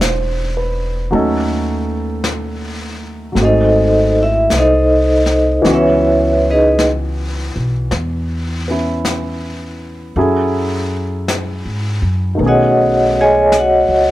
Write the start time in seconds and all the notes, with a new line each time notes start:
Already playing: E1 G3 A3 C4 D4 E4 G4 A4 D5
0.01 C5, brush sweep, snare, hi-hat pedal
0.57 B4
1.11 D#2 F#3 A3 C#4 D#4, brush sweep
1.15 A4
2.24 brush sweep, snare, hi-hat pedal
3.32 G#1 F#3 A3
3.36 C4, brush sweep, snare
3.40 G#3 F#4 C5
3.44 D#4 A4 D#5
4.22 E4 E5
4.50 C2, brush sweep, snare, hi-hat pedal
4.57 D#4 A4 C5 D#5
5.26 snare
5.62 C#2 E3 B3 C#4, brush sweep, snare
5.66 F#4
5.73 E4 B4 C#5 E5
6.51 D#4 G#4 B4 D#5
6.79 brush sweep, snare, hi-hat pedal
7.56 B1
7.91 E2, brush sweep, snare
8.68 B3 C#4 E4
9.05 brush sweep, snare, hi-hat pedal
10.16 F#2 F#3 C#4 E4 G#4 A4, brush sweep
11.28 brush sweep, snare, hi-hat pedal
11.65 G#2
12.02 F#2
12.35 D#3 A3
12.39 B1 B3 C#4, brush sweep
12.46 F#4 G#4 C#5 D#5 F#5
13.21 G#4 C#5 D#5 G#5
13.52 brush sweep, snare, hi-hat pedal
13.58 F#4 C#5 D#5 F#5
13.89 C#2